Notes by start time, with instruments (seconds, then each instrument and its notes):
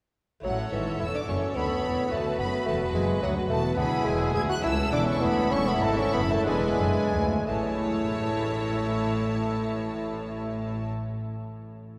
0.40 lute A3 E4 C#5, violin section C#5 F#5
0.44 double bass section A1, lute A2, cello section A2, bassoon F#3, viola section A4
0.72 double bass section G#1, cello section G#2, lute G#2, bassoon E3, violin section E5
1.00 double bass section E1, cello section E2, lute E2, bassoon E4, violin section E6
1.15 bassoon D4, violin section D6
1.25 double bass section F#1, cello section F#2, lute A3 F#4 C#5, bassoon C#4, violin section C#5
1.29 lute F#2, viola section A4, violin section C#6
1.55 double bass section D2, cello section D2, lute D2, bassoon B3, violin section B5
1.84 double bass section E1, cello section E2, lute E2
2.08 double bass section D2, bassoon A3, lute B3 F#4 B4, violin section B4
2.13 cello section D2, lute D2, viola section F#4, violin section A5
2.39 double bass section F#1, lute F#2, cello section F#2, bassoon B3, violin section B5
2.66 double bass section E1, lute E2, cello section E2, bassoon A3, violin section A5
2.94 double bass section F#1, cello section F#2, lute F#2, bassoon G#3, violin section G#5
3.22 double bass section D2, cello section D2, lute D2, bassoon F#3, violin section F#5
3.50 double bass section E1, cello section E2, lute E2, bassoon A3, violin section A5
3.74 cello section D2, lute B3 E4 G#4, bassoon B3, viola section E4, violin section B5
3.78 double bass section D2, lute D2, violin section G#4
4.05 double bass section E1, cello section E2, lute E2, bassoon G#3, violin section G#5
4.34 lute D2, cello section D2, double bass section D2, bassoon G#4, violin section G#6
4.49 bassoon F#4, violin section F#6
4.59 lute C#4 E4 A4, viola section E4
4.64 cello section C#2, double bass section C#2, bassoon E4, violin section A4 E6
4.92 double bass section E1, cello section E2, lute E2, bassoon D4, violin section D6
5.06 bassoon C#4, violin section C#6
5.20 cello section D2, double bass section D2, lute D2, bassoon B3, violin section B5
5.48 cello section E2, lute C#4 E4 A4, bassoon C#4, viola section E4, violin section C#6
5.53 double bass section E1, lute E2, violin section A4
5.67 bassoon B3, violin section B5
5.82 double bass section G#1, cello section G#2, lute G#2, bassoon A3, violin section A5
5.98 bassoon C#4, violin section C#6
6.14 double bass section F#1, cello section F#2, lute F#2, bassoon B3, violin section B5
6.30 bassoon A3, violin section A5
6.43 double bass section E1, cello section E2, bassoon G#3, lute D4 E4 B4, viola section D4, violin section G#5
6.47 lute E2, violin section B4
6.79 double bass section F#1, cello section F#2, lute F#2
7.12 cello section D2, lute D2, double bass section D2
7.47 double bass section A1, cello section A2, lute A2, bassoon A3, viola section E4, violin section C#5 A5
7.55 lute A3
7.62 lute C#4
7.69 lute E4
7.76 lute A4
7.83 lute E5